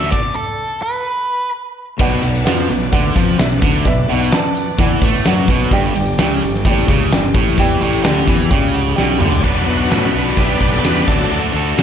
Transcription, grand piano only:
2.00 B4 D5 F#5
2.24 B4 D5 F#5
2.44 B4 D5 F#5
2.92 B4 D5 F#5
3.38 B4 D5 E5
3.85 B4 D5 E5
4.08 B4 D5 F#5
4.33 B4 D5 A5
4.80 B4 D5 F#5
5.26 B4 D5 F#5
5.72 G4 D5 G5
5.96 G4 D5 G5
6.19 G4 D5 G5
6.65 G4 D5 G5
7.12 G4 D5 G5
7.59 G4 D5 G5
7.82 G4 D5 G5
8.05 G4 D5 G5
8.49 G4 D5 G5
8.74 F#5
8.95 G4 D5 G5
9.19 B5

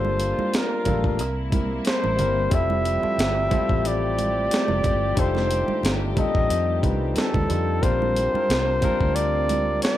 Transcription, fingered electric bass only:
Already playing: G1
0.39 muted fingered electric bass stroke
0.86 A1
1.20 C2
2.05 A1
2.20 G1
2.52 F1
3.04 muted fingered electric bass stroke
3.18 G1
3.70 A1
4.69 F1
4.85 G1
5.17 F1
5.69 muted fingered electric bass stroke
5.83 G1
6.35 A1
6.50 F2
6.83 C2
7.17 muted fingered electric bass stroke
7.34 D2
7.50 F2
7.83 A#1
8.34 muted fingered electric bass stroke
8.50 C2
9.01 D2

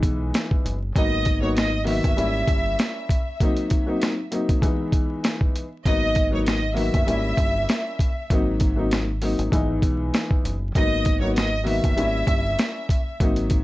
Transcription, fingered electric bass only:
0.03 B1
0.65 F#1
0.96 G#1
2.04 F#1
2.18 G#1
2.47 G1
5.85 G#1
6.94 F#1
7.08 G#1
7.37 G1
8.30 G#1
9.39 G#1
9.52 G#1
9.82 B1
10.45 F#1
10.75 G#1
11.84 F#1
11.98 G#1
12.27 G1
13.20 G#1

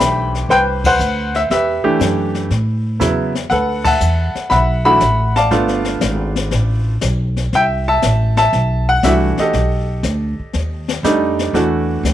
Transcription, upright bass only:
0.00 B1
0.49 C2
0.99 D2
1.50 E2
1.85 muted upright bass stroke
2.00 F#2
2.51 A2
3.00 E2
3.51 D2
4.01 E2
4.35 muted upright bass stroke
4.51 B1
5.01 A1
5.51 G1
6.01 G#1
6.52 A1
7.02 B1
7.53 C2
8.03 A1
8.53 B1
9.03 C2
9.38 muted upright bass stroke
9.53 B1
10.03 D2
10.39 muted upright bass stroke
10.54 D#2
11.03 F2
11.53 E2
12.03 D2

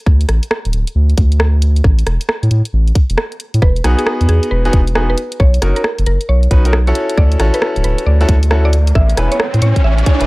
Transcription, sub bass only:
0.06 D2
0.29 A1
0.65 D1
0.73 D1
0.95 D2
1.18 D2
1.84 A1
2.06 E1
2.43 A2
2.51 A2
2.73 A1
3.10 E1
3.54 A2
3.62 E1
3.84 B1
4.21 E2
4.29 E2
4.51 E1
4.73 E1
5.40 B1
5.62 F#1
5.99 F#1
6.06 F#1
6.29 B1
6.51 B1
7.18 D2
7.40 A1
7.76 D1
7.84 D1
8.06 D2
8.29 D2
8.95 A1
9.17 E1
9.54 A2
9.62 A2
9.84 A1
10.21 E1

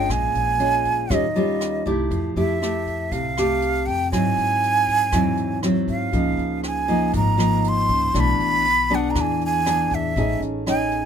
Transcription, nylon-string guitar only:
Already playing: G#3 C#4 F4
0.09 A#2
0.59 G#3 C#4 F4
1.10 D#3 G3 C#4 F4
1.36 G3 C#4 F4
1.86 A3 E4 G4
2.11 F3
2.37 A3 E4 G4
2.62 A3 E4 G4
3.12 C3
3.38 A3 G4
4.12 G#2 F#3 C4 E4
5.13 G#2 F#3 C4 E4
5.63 F#3 C4 E4
6.12 C#3 F3 A#3 D#4
6.88 F3 A#3 D#4
7.13 G#2
7.38 F3 A#3 D#4
8.14 B2 E3 A3 D4
8.90 B3 D4 G#4
9.15 E3
9.66 B3 D4 G#4
10.17 A3 C#4 D#4 G#4
10.66 C#4 D#4 G#4

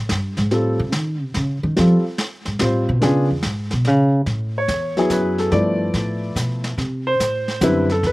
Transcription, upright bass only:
0.11 G2
0.38 G#2
0.53 A2
0.79 C3
0.95 D#3
1.22 C3
1.36 C#3
1.63 D#3
1.79 F3
2.47 G#2
2.62 A2
2.89 B2
3.03 C#3
3.30 E2
3.45 G#2
3.73 B2
3.87 C#3
4.26 A2
4.68 E2
5.10 F#2
5.52 G2
5.94 A2
6.36 B2
6.78 C3
7.20 A2
7.61 F#2
8.03 E2

